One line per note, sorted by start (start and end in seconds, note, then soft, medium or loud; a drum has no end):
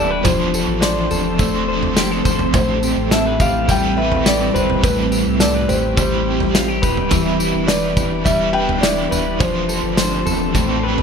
0.00 0.24 E1 medium
0.00 0.23 E3 medium
0.00 0.25 E3 medium
0.00 0.31 G3 medium
0.00 0.23 B3 medium
0.00 0.23 D4 medium
0.00 0.27 D4 soft
0.00 0.26 E4 medium
0.00 0.31 E4 medium
0.00 0.23 G4 medium
0.00 0.11 A4 medium
0.00 0.25 B4 medium
0.00 0.25 D5 medium
0.11 0.31 B4 medium
0.23 0.66 F1 loud
0.23 1.39 F3 medium
0.23 2.54 F3 medium
0.23 2.52 F3 medium
0.23 1.38 A3 medium
0.23 7.07 C4 medium
0.23 2.52 D4 medium
0.23 1.39 D4 medium
0.23 4.79 A4 medium
0.23 0.78 C5 medium
0.23 2.52 C5 medium
0.23 kick loud
0.23 floor tom loud
0.23 tambourine medium
0.28 1.41 A4 medium
0.28 1.42 C5 medium
0.54 1.10 A4 medium
0.54 tambourine medium
0.68 1.09 A1 loud
0.81 1.68 C5 medium
0.81 2.21 D5 medium
0.81 snare loud
0.81 tambourine loud
1.11 2.22 F1 loud
1.11 1.97 A4 medium
1.11 floor tom medium
1.11 tambourine medium
1.38 1.68 A3 medium
1.38 2.87 A3 medium
1.38 1.69 D4 medium
1.38 1.68 A4 medium
1.38 kick medium
1.38 floor tom medium
1.38 tambourine medium
1.42 1.65 C5 medium
1.66 2.58 A4 medium
1.66 3.71 C5 medium
1.66 2.26 C5 medium
1.71 2.56 D4 medium
1.83 floor tom medium
1.97 2.11 G4 medium
1.97 snare loud
1.97 tambourine medium
2.11 2.60 A4 medium
2.25 2.53 G1 medium
2.25 3.12 C5 medium
2.25 kick medium
2.25 floor tom medium
2.25 tambourine medium
2.39 floor tom medium
2.53 2.95 A1 loud
2.53 3.68 A2 medium
2.53 4.82 A2 medium
2.53 4.83 E3 medium
2.53 7.07 G3 medium
2.53 3.67 G3 medium
2.53 7.07 E4 medium
2.53 3.14 C5 medium
2.53 kick loud
2.53 floor tom loud
2.53 tambourine medium
2.57 3.68 C4 medium
2.57 3.70 G4 medium
2.83 3.41 G4 medium
2.83 tambourine medium
2.97 3.38 A1 loud
3.11 3.26 A4 medium
3.11 3.42 E5 loud
3.11 snare loud
3.11 tambourine medium
3.26 3.97 B4 medium
3.40 4.50 A1 medium
3.40 4.26 G4 medium
3.40 3.70 F5 loud
3.40 kick medium
3.40 floor tom medium
3.40 tambourine medium
3.67 3.97 G3 medium
3.67 5.97 G3 medium
3.67 3.98 C4 medium
3.67 3.97 G4 medium
3.67 3.99 G5 loud
3.67 kick medium
3.67 floor tom medium
3.67 tambourine medium
3.72 3.95 B4 medium
3.96 4.84 G3 soft
3.96 4.84 C4 medium
3.96 4.84 G4 medium
3.96 4.84 B4 medium
3.96 4.54 B4 medium
3.96 4.24 E5 medium
4.12 floor tom medium
4.26 5.11 G4 medium
4.26 4.56 D5 loud
4.26 snare loud
4.26 tambourine medium
4.54 4.82 G1 medium
4.54 5.40 B4 medium
4.54 4.84 C5 medium
4.54 floor tom medium
4.54 tambourine medium
4.70 floor tom medium
4.81 5.24 A1 loud
4.81 5.97 A2 medium
4.81 7.12 A2 medium
4.81 7.09 E3 medium
4.81 5.96 G3 medium
4.81 9.37 G4 medium
4.81 5.42 B4 medium
4.81 kick loud
4.81 floor tom loud
4.81 tambourine medium
4.86 5.97 C4 medium
4.86 5.99 G4 medium
4.86 6.00 B4 medium
5.11 5.68 G4 medium
5.11 tambourine medium
5.26 5.67 C2 medium
5.40 5.54 A4 medium
5.40 5.70 D5 loud
5.40 snare loud
5.40 tambourine loud
5.54 6.26 B4 medium
5.69 6.85 A1 medium
5.69 6.54 G4 medium
5.69 5.96 C5 medium
5.69 floor tom medium
5.69 tambourine medium
5.96 6.25 G3 medium
5.96 8.24 G3 medium
5.96 6.26 C4 medium
5.96 6.27 G4 medium
5.96 6.79 C5 medium
5.96 kick medium
5.96 floor tom medium
5.96 tambourine medium
6.01 6.28 B4 medium
6.28 7.10 G3 soft
6.28 7.12 C4 medium
6.28 7.14 G4 medium
6.40 floor tom medium
6.54 6.68 F4 medium
6.54 snare loud
6.54 tambourine medium
6.68 7.17 G4 medium
6.82 7.10 D1 medium
6.82 7.68 B4 medium
6.82 kick medium
6.82 floor tom medium
6.82 tambourine medium
6.97 floor tom medium
7.09 7.52 E1 loud
7.09 8.25 E3 medium
7.09 9.39 E3 medium
7.09 9.38 E3 medium
7.09 8.23 G3 medium
7.09 9.38 B3 medium
7.09 10.51 D4 medium
7.09 8.25 D4 medium
7.09 9.37 B4 medium
7.09 kick loud
7.09 floor tom loud
7.09 tambourine medium
7.14 8.26 E4 loud
7.14 8.27 B4 loud
7.39 7.95 E4 medium
7.39 tambourine medium
7.55 7.95 E1 loud
7.67 8.52 B4 medium
7.67 8.27 D5 loud
7.67 snare loud
7.67 tambourine loud
7.96 9.07 E1 medium
7.96 8.81 E4 medium
7.96 kick medium
7.96 floor tom medium
7.96 tambourine medium
8.24 8.54 G3 medium
8.24 9.45 G3 medium
8.24 8.54 D4 medium
8.24 8.55 E4 medium
8.24 8.55 E5 loud
8.24 kick medium
8.24 floor tom medium
8.24 tambourine medium
8.29 8.52 B4 medium
8.53 9.41 E4 medium
8.53 9.40 B4 medium
8.53 9.10 B4 medium
8.53 8.83 G5 loud
8.58 9.41 D4 soft
8.69 floor tom medium
8.81 9.46 E4 medium
8.81 9.41 D5 loud
8.81 snare loud
8.81 tambourine medium
9.11 9.39 E1 medium
9.11 9.46 B4 medium
9.11 floor tom medium
9.11 tambourine medium
9.38 9.81 F1 loud
9.38 10.54 F3 medium
9.38 10.53 F3 medium
9.38 10.60 F3 medium
9.38 10.53 A3 medium
9.38 11.03 C4 medium
9.38 10.54 D4 medium
9.38 11.03 A4 medium
9.38 10.53 C5 medium
9.38 11.03 C5 medium
9.38 kick loud
9.38 floor tom loud
9.38 tambourine medium
9.43 10.56 A4 medium
9.43 10.57 C5 medium
9.69 10.25 A4 medium
9.69 tambourine medium
9.83 10.24 G1 medium
9.97 10.83 C5 medium
9.97 snare loud
9.97 tambourine medium
10.26 10.53 F1 medium
10.26 10.86 A4 medium
10.26 floor tom medium
10.26 tambourine medium
10.53 11.03 A1 loud
10.53 11.03 A2 medium
10.53 10.82 G3 medium
10.53 11.03 G3 medium
10.53 10.83 C4 medium
10.53 11.03 E4 medium
10.53 11.03 G4 medium
10.53 10.82 G4 medium
10.53 kick medium
10.53 floor tom medium
10.53 tambourine medium
10.57 10.80 B4 medium
10.81 11.03 C4 medium
10.81 11.03 G4 medium
10.81 11.03 B4 medium
10.86 11.03 G3 medium
10.98 floor tom medium